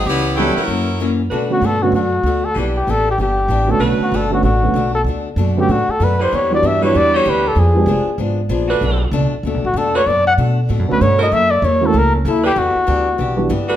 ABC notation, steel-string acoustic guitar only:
X:1
M:4/4
L:1/8
Q:"Swing" 1/4=192
K:Bm
V:1 name="Steel-string acoustic guitar"
[C,G,B,E] z [C,G,B,E] z [F,,E,^A,C] z [F,,E,A,C] z | [B,,A,DF] z [B,,A,DF] z [B,,A,DF] z [B,,A,DF] z | [E,B,DG] z [E,B,DG] z [E,B,DG] z [E,B,DG] z | [B,,A,DF] z [B,,A,DF] z [B,,A,DF] z [B,,A,DF] z |
[B,,A,DF] z [B,,A,DF] z [B,,A,DF] z [B,,A,DF] z | [E,B,DG] z [E,B,DG] z [E,B,DG] z [E,B,DG] z | [=F,_CD_A] z [F,CDA] z [F,CDA] z [F,CDA] z | [B,,A,DF] z [B,,A,DF] z [B,,A,DF] z [B,,A,DF] z |
[B,,A,DF] z [B,,A,DF] z [B,,A,DF] z [B,,A,DF] z | [F,^A,E=A] z [F,^A,E=A] z [F,^A,E=A] z [F,^A,E=A] z | [E,B,DG] z [E,B,DG] z [E,B,DG] z [E,B,DG] z |]